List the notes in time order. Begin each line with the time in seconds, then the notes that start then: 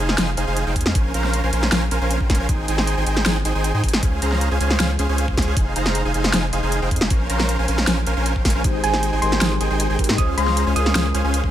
0.00 F1 D#4 G#4 C5 F5 G#5
0.09 snare
0.18 F1 D#4 G#4 C5 F5 G#5, snare, closed hi-hat
0.37 F1 D#4 G#4 C5 F5 G#5, closed hi-hat
0.47 F1 D#4 G#4 C5 F5 G#5
0.57 closed hi-hat
0.66 F1 D#4 G#4 C5 F5 G5
0.76 F2 D#4 G#4 C5 F5 G#5, kick, closed hi-hat
0.81 closed hi-hat
0.86 F2 D#4 G#4 C5 F5 G#5, snare
0.95 A#1 C#4 A#4 C5 F5 G#5, kick, closed hi-hat
1.14 A#1 C#4 A#4 C5 F5 A#5, closed hi-hat
1.24 snare
1.33 closed hi-hat
1.43 A#1 C#4 A#4 C5 F5 G#5
1.53 A#1 C#4 A#4 C5 F5 G#5, closed hi-hat
1.63 snare
1.72 A#1 C#4 A#4 C5 F5 G#5, snare, closed hi-hat
1.91 A#1 C#4 A#4 C5 F5 G#5, closed hi-hat
2.01 A#1 C#4 A#4 C5 F5 G#5
2.11 closed hi-hat
2.20 A#1 C#4 A#4 C5 F5 G5, kick
2.30 A#1 C#4 A#4 C5 F5 G#5, kick, snare, closed hi-hat
2.35 closed hi-hat
2.39 A#1 C#4 A#4 C5 F5 G#5
2.49 G#1 D#4 G#4 C5 G5 G#5, kick, closed hi-hat
2.68 G#1 D#4 G#4 C5 G5 G#5, closed hi-hat
2.78 snare
2.87 closed hi-hat
2.97 G#1 D#4 G#4 C5 G5 G#5
3.06 G#1 D#4 G#4 C5 G5 G#5, closed hi-hat
3.17 snare
3.26 G#1 D#4 G#4 C5 G5 G#5, snare, closed hi-hat
3.45 G#1 D#4 G#4 C5 G5 G#5, closed hi-hat
3.55 G#1 D#4 G#4 C5 G5 G#5
3.64 closed hi-hat
3.74 G#2 D#4 G#4 C5 G5 G#5
3.84 G#1 D#4 G#4 C5 G5 G#5, kick, closed hi-hat
3.88 closed hi-hat
3.93 G#1 D#4 G#4 C5 G5 G#5, snare
4.03 C#2 C#4 G#4 C5 F5 G#5, kick, closed hi-hat
4.22 C#2 C#4 G#4 C5 F5 A#5, closed hi-hat
4.32 snare
4.41 closed hi-hat
4.51 C#2 C#4 G#4 C5 F5 G#5
4.60 C#2 C#4 G#4 C5 F5 G#5, closed hi-hat
4.71 snare
4.80 C#2 C#4 G#4 C5 F5 G#5, snare, closed hi-hat
4.99 C#2 C#4 G#4 C5 F5 G#5, closed hi-hat
5.09 C#2 C#4 G#4 C5 F5 G#5
5.18 closed hi-hat
5.28 C#2 C#4 G#4 C5 F5 G#5, kick
5.37 C#2 C#4 G#4 C5 F5 G#5, kick, snare, closed hi-hat
5.42 closed hi-hat
5.47 C#2 C#4 G#4 C5 F5 G#5
5.57 F1 D#4 G#4 C5 F5 G#5, kick, closed hi-hat
5.76 F1 D#4 G#4 C5 F5 A#5, closed hi-hat
5.86 snare
5.95 closed hi-hat
6.05 F1 D#4 G#4 C5 F5 G#5
6.14 F1 D#4 G#4 C5 F5 G#5, closed hi-hat
6.24 snare
6.34 F1 D#4 G#4 C5 F5 G#5, snare, closed hi-hat
6.53 F1 D#4 G#4 C5 F5 G#5, closed hi-hat
6.63 F1 D#4 G#4 C5 F5 G#5
6.72 closed hi-hat
6.82 F1 D#4 G#4 C5 F5 G5
6.91 F2 D#4 G#4 C5 F5 G#5, kick, closed hi-hat
6.96 closed hi-hat
7.01 F1 D#4 G#4 C5 F5 G#5, snare
7.10 A#1 C#4 A#4 C5 F5 G#5, kick, closed hi-hat
7.30 A#1 C#4 A#4 C5 F5 A#5, closed hi-hat
7.40 snare
7.49 closed hi-hat
7.59 A#1 C#4 A#4 C5 F5 G#5
7.68 A#1 C#4 A#4 C5 F5 G#5, closed hi-hat
7.78 snare
7.87 A#1 C#4 A#4 C5 F5 G#5, snare, closed hi-hat
8.07 A#1 C#4 A#4 C5 F5 G#5, closed hi-hat
8.17 A#1 C#4 A#4 C5 F5 G#5
8.26 closed hi-hat
8.36 A#1 C#4 A#4 C5 F5 G5, kick
8.45 A#1 C#4 A#4 C5 F5 G#5, kick, snare, open hi-hat
8.50 closed hi-hat
8.55 A#1 C#4 A#4 C5 F5 G#5
8.62 G#1 G#3 D#4 G4 G#4 C5 G5 G#5, kick, closed hi-hat
8.84 G#1 D#4 G#4 C5 G5 G#5, closed hi-hat
8.94 snare
9.03 closed hi-hat
9.13 G#1 D#4 G#4 C5 G5 G#5
9.20 G#1 G#3 D#4 G4 G#4 C5 G5 G#5 C6, closed hi-hat
9.24 A#4
9.32 snare
9.41 G#1 D#4 G#4 C5 G5 G#5, snare, closed hi-hat
9.61 G#1 D#4 G#4 C5 G5 G#5, closed hi-hat
9.70 G#1 D#4 G#4 C5 G5 G#5
9.80 closed hi-hat
9.90 G#1 D#4 G#4 C5 G5 G#5
9.98 G#1 G#3 D#4 G4 G#4 A#4 C5 G5 G#5, kick, closed hi-hat
10.04 closed hi-hat
10.09 G#2 D#4 G#4 C5 G5 G#5, snare
10.16 C#2 G#3 C#4 F4 G#4 C5 F5 G#5 D#6, kick, closed hi-hat
10.37 C#2 C#4 G#4 C5 F5 A#5 C6, closed hi-hat
10.48 snare
10.57 closed hi-hat
10.67 C#2 C#4 G#4 C5 F5 G#5
10.74 C#2 G#3 C#4 F4 G#4 C5 F5 G#5 D#6, closed hi-hat
10.78 A#4
10.86 snare
10.95 C#2 C#4 G#4 C5 F5 G#5, snare, closed hi-hat
11.14 C#2 C#4 G#4 C5 F5 G#5, closed hi-hat
11.24 C#2 C#4 G#4 C5 F5 G#5
11.34 closed hi-hat
11.44 C#2 C#4 G#4 C5 F5 G#5, kick